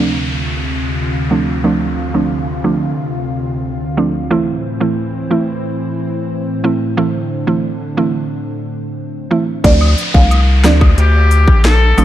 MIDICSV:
0, 0, Header, 1, 8, 480
1, 0, Start_track
1, 0, Key_signature, -1, "minor"
1, 0, Tempo, 666667
1, 1183, Time_signature, 4, 2, 24, 8
1, 8674, End_track
2, 0, Start_track
2, 0, Title_t, "Marimba"
2, 0, Program_c, 0, 12
2, 6943, Note_on_c, 0, 74, 117
2, 7039, Note_off_c, 0, 74, 0
2, 7304, Note_on_c, 0, 77, 83
2, 7495, Note_off_c, 0, 77, 0
2, 7663, Note_on_c, 0, 74, 76
2, 7855, Note_off_c, 0, 74, 0
2, 8674, End_track
3, 0, Start_track
3, 0, Title_t, "Horn section"
3, 0, Program_c, 1, 61
3, 7904, Note_on_c, 1, 67, 101
3, 8355, Note_off_c, 1, 67, 0
3, 8382, Note_on_c, 1, 69, 114
3, 8674, Note_off_c, 1, 69, 0
3, 8674, End_track
4, 0, Start_track
4, 0, Title_t, "Synth pluck"
4, 0, Program_c, 2, 84
4, 0, Note_on_c, 2, 53, 73
4, 0, Note_on_c, 2, 57, 68
4, 0, Note_on_c, 2, 60, 66
4, 0, Note_on_c, 2, 62, 84
4, 92, Note_off_c, 2, 53, 0
4, 93, Note_off_c, 2, 57, 0
4, 93, Note_off_c, 2, 60, 0
4, 95, Note_off_c, 2, 62, 0
4, 940, Note_on_c, 2, 53, 76
4, 942, Note_on_c, 2, 57, 70
4, 943, Note_on_c, 2, 60, 68
4, 945, Note_on_c, 2, 62, 85
4, 1163, Note_off_c, 2, 53, 0
4, 1163, Note_off_c, 2, 57, 0
4, 1164, Note_off_c, 2, 60, 0
4, 1165, Note_off_c, 2, 62, 0
4, 1181, Note_on_c, 2, 53, 90
4, 1181, Note_on_c, 2, 57, 81
4, 1183, Note_on_c, 2, 60, 81
4, 1184, Note_on_c, 2, 62, 96
4, 1513, Note_off_c, 2, 53, 0
4, 1513, Note_off_c, 2, 57, 0
4, 1514, Note_off_c, 2, 60, 0
4, 1515, Note_off_c, 2, 62, 0
4, 1541, Note_on_c, 2, 53, 73
4, 1543, Note_on_c, 2, 57, 67
4, 1544, Note_on_c, 2, 60, 69
4, 1546, Note_on_c, 2, 62, 82
4, 1653, Note_off_c, 2, 53, 0
4, 1654, Note_off_c, 2, 57, 0
4, 1654, Note_off_c, 2, 60, 0
4, 1655, Note_off_c, 2, 62, 0
4, 1901, Note_on_c, 2, 53, 76
4, 1902, Note_on_c, 2, 57, 69
4, 1904, Note_on_c, 2, 60, 70
4, 1905, Note_on_c, 2, 62, 83
4, 2013, Note_off_c, 2, 53, 0
4, 2013, Note_off_c, 2, 57, 0
4, 2014, Note_off_c, 2, 60, 0
4, 2014, Note_off_c, 2, 62, 0
4, 2860, Note_on_c, 2, 53, 73
4, 2862, Note_on_c, 2, 57, 65
4, 2863, Note_on_c, 2, 60, 70
4, 2865, Note_on_c, 2, 62, 83
4, 2972, Note_off_c, 2, 53, 0
4, 2973, Note_off_c, 2, 57, 0
4, 2974, Note_off_c, 2, 60, 0
4, 2974, Note_off_c, 2, 62, 0
4, 3100, Note_on_c, 2, 52, 90
4, 3101, Note_on_c, 2, 57, 82
4, 3102, Note_on_c, 2, 60, 83
4, 3104, Note_on_c, 2, 64, 100
4, 3433, Note_off_c, 2, 52, 0
4, 3433, Note_off_c, 2, 57, 0
4, 3434, Note_off_c, 2, 60, 0
4, 3435, Note_off_c, 2, 64, 0
4, 3459, Note_on_c, 2, 52, 75
4, 3461, Note_on_c, 2, 57, 65
4, 3462, Note_on_c, 2, 60, 68
4, 3464, Note_on_c, 2, 64, 81
4, 3572, Note_off_c, 2, 52, 0
4, 3573, Note_off_c, 2, 57, 0
4, 3573, Note_off_c, 2, 60, 0
4, 3574, Note_off_c, 2, 64, 0
4, 3820, Note_on_c, 2, 52, 75
4, 3822, Note_on_c, 2, 57, 67
4, 3823, Note_on_c, 2, 60, 68
4, 3824, Note_on_c, 2, 64, 80
4, 3932, Note_off_c, 2, 52, 0
4, 3933, Note_off_c, 2, 57, 0
4, 3934, Note_off_c, 2, 60, 0
4, 3934, Note_off_c, 2, 64, 0
4, 4779, Note_on_c, 2, 52, 79
4, 4781, Note_on_c, 2, 57, 68
4, 4782, Note_on_c, 2, 60, 72
4, 4784, Note_on_c, 2, 64, 82
4, 5002, Note_off_c, 2, 52, 0
4, 5003, Note_off_c, 2, 57, 0
4, 5003, Note_off_c, 2, 60, 0
4, 5004, Note_off_c, 2, 64, 0
4, 5020, Note_on_c, 2, 52, 90
4, 5022, Note_on_c, 2, 57, 84
4, 5023, Note_on_c, 2, 60, 83
4, 5025, Note_on_c, 2, 64, 99
4, 5353, Note_off_c, 2, 52, 0
4, 5354, Note_off_c, 2, 57, 0
4, 5354, Note_off_c, 2, 60, 0
4, 5355, Note_off_c, 2, 64, 0
4, 5379, Note_on_c, 2, 52, 75
4, 5380, Note_on_c, 2, 57, 68
4, 5381, Note_on_c, 2, 60, 65
4, 5383, Note_on_c, 2, 64, 79
4, 5492, Note_off_c, 2, 52, 0
4, 5492, Note_off_c, 2, 57, 0
4, 5493, Note_off_c, 2, 60, 0
4, 5494, Note_off_c, 2, 64, 0
4, 5740, Note_on_c, 2, 52, 72
4, 5741, Note_on_c, 2, 57, 70
4, 5743, Note_on_c, 2, 60, 71
4, 5744, Note_on_c, 2, 64, 84
4, 5852, Note_off_c, 2, 52, 0
4, 5853, Note_off_c, 2, 57, 0
4, 5853, Note_off_c, 2, 60, 0
4, 5854, Note_off_c, 2, 64, 0
4, 6701, Note_on_c, 2, 52, 76
4, 6703, Note_on_c, 2, 57, 71
4, 6704, Note_on_c, 2, 60, 69
4, 6705, Note_on_c, 2, 64, 84
4, 6812, Note_off_c, 2, 52, 0
4, 6813, Note_off_c, 2, 57, 0
4, 6814, Note_off_c, 2, 60, 0
4, 6814, Note_off_c, 2, 64, 0
4, 6941, Note_on_c, 2, 53, 95
4, 6942, Note_on_c, 2, 57, 86
4, 6943, Note_on_c, 2, 60, 88
4, 6945, Note_on_c, 2, 62, 104
4, 7273, Note_off_c, 2, 53, 0
4, 7274, Note_off_c, 2, 57, 0
4, 7274, Note_off_c, 2, 60, 0
4, 7275, Note_off_c, 2, 62, 0
4, 7302, Note_on_c, 2, 53, 75
4, 7303, Note_on_c, 2, 57, 73
4, 7305, Note_on_c, 2, 60, 72
4, 7306, Note_on_c, 2, 62, 84
4, 7413, Note_off_c, 2, 53, 0
4, 7413, Note_off_c, 2, 57, 0
4, 7414, Note_off_c, 2, 60, 0
4, 7415, Note_off_c, 2, 62, 0
4, 7662, Note_on_c, 2, 53, 80
4, 7663, Note_on_c, 2, 57, 73
4, 7665, Note_on_c, 2, 60, 76
4, 7667, Note_on_c, 2, 62, 87
4, 7773, Note_off_c, 2, 53, 0
4, 7774, Note_off_c, 2, 57, 0
4, 7774, Note_off_c, 2, 60, 0
4, 7775, Note_off_c, 2, 62, 0
4, 8622, Note_on_c, 2, 53, 77
4, 8623, Note_on_c, 2, 57, 71
4, 8625, Note_on_c, 2, 60, 71
4, 8626, Note_on_c, 2, 62, 87
4, 8674, Note_off_c, 2, 53, 0
4, 8674, Note_off_c, 2, 57, 0
4, 8674, Note_off_c, 2, 60, 0
4, 8674, Note_off_c, 2, 62, 0
4, 8674, End_track
5, 0, Start_track
5, 0, Title_t, "Analog synth pad"
5, 0, Program_c, 3, 89
5, 0, Note_on_c, 3, 38, 73
5, 0, Note_on_c, 3, 48, 68
5, 0, Note_on_c, 3, 65, 82
5, 3074, Note_off_c, 3, 38, 0
5, 3074, Note_off_c, 3, 65, 0
5, 3075, Note_off_c, 3, 48, 0
5, 3105, Note_on_c, 3, 45, 74
5, 3105, Note_on_c, 3, 52, 71
5, 3105, Note_on_c, 3, 60, 82
5, 5005, Note_off_c, 3, 52, 0
5, 5022, Note_on_c, 3, 50, 69
5, 6915, Note_off_c, 3, 45, 0
5, 6915, Note_off_c, 3, 60, 0
5, 6923, Note_off_c, 3, 50, 0
5, 8674, End_track
6, 0, Start_track
6, 0, Title_t, "Analog synth bass"
6, 0, Program_c, 4, 38
6, 6943, Note_on_c, 4, 38, 119
6, 7163, Note_off_c, 4, 38, 0
6, 7304, Note_on_c, 4, 36, 96
6, 7662, Note_on_c, 4, 38, 105
6, 7673, Note_off_c, 4, 36, 0
6, 7882, Note_off_c, 4, 38, 0
6, 7903, Note_on_c, 4, 38, 113
6, 8262, Note_on_c, 4, 34, 94
6, 8273, Note_off_c, 4, 38, 0
6, 8594, Note_off_c, 4, 34, 0
6, 8624, Note_on_c, 4, 33, 92
6, 8674, Note_off_c, 4, 33, 0
6, 8674, End_track
7, 0, Start_track
7, 0, Title_t, "Downlifter"
7, 0, Program_c, 5, 103
7, 0, Note_on_c, 5, 60, 78
7, 3103, Note_off_c, 5, 60, 0
7, 6944, Note_on_c, 5, 60, 91
7, 8674, Note_off_c, 5, 60, 0
7, 8674, End_track
8, 0, Start_track
8, 0, Title_t, "Drums"
8, 6943, Note_on_c, 9, 36, 117
8, 6943, Note_on_c, 9, 42, 94
8, 7015, Note_off_c, 9, 36, 0
8, 7015, Note_off_c, 9, 42, 0
8, 7063, Note_on_c, 9, 76, 83
8, 7135, Note_off_c, 9, 76, 0
8, 7184, Note_on_c, 9, 42, 42
8, 7185, Note_on_c, 9, 69, 76
8, 7256, Note_off_c, 9, 42, 0
8, 7257, Note_off_c, 9, 69, 0
8, 7304, Note_on_c, 9, 36, 99
8, 7376, Note_off_c, 9, 36, 0
8, 7423, Note_on_c, 9, 76, 81
8, 7425, Note_on_c, 9, 42, 79
8, 7495, Note_off_c, 9, 76, 0
8, 7497, Note_off_c, 9, 42, 0
8, 7662, Note_on_c, 9, 42, 59
8, 7663, Note_on_c, 9, 37, 109
8, 7663, Note_on_c, 9, 38, 126
8, 7663, Note_on_c, 9, 69, 73
8, 7734, Note_off_c, 9, 42, 0
8, 7735, Note_off_c, 9, 37, 0
8, 7735, Note_off_c, 9, 38, 0
8, 7735, Note_off_c, 9, 69, 0
8, 7784, Note_on_c, 9, 76, 71
8, 7785, Note_on_c, 9, 36, 100
8, 7856, Note_off_c, 9, 76, 0
8, 7857, Note_off_c, 9, 36, 0
8, 7905, Note_on_c, 9, 42, 92
8, 7977, Note_off_c, 9, 42, 0
8, 8143, Note_on_c, 9, 42, 60
8, 8144, Note_on_c, 9, 69, 78
8, 8215, Note_off_c, 9, 42, 0
8, 8216, Note_off_c, 9, 69, 0
8, 8262, Note_on_c, 9, 36, 105
8, 8334, Note_off_c, 9, 36, 0
8, 8385, Note_on_c, 9, 42, 73
8, 8386, Note_on_c, 9, 37, 89
8, 8386, Note_on_c, 9, 38, 110
8, 8457, Note_off_c, 9, 42, 0
8, 8458, Note_off_c, 9, 37, 0
8, 8458, Note_off_c, 9, 38, 0
8, 8624, Note_on_c, 9, 42, 53
8, 8625, Note_on_c, 9, 69, 76
8, 8625, Note_on_c, 9, 76, 72
8, 8674, Note_off_c, 9, 42, 0
8, 8674, Note_off_c, 9, 69, 0
8, 8674, Note_off_c, 9, 76, 0
8, 8674, End_track
0, 0, End_of_file